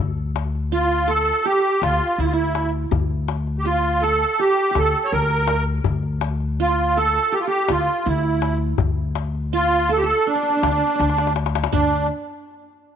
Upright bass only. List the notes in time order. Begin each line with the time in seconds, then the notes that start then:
0.00 D2
1.82 D2
2.18 D2
2.91 D2
4.75 D2
5.12 D2
5.86 D2
7.69 D2
8.06 D2
8.80 D2
10.63 D2
11.00 D2
11.73 D2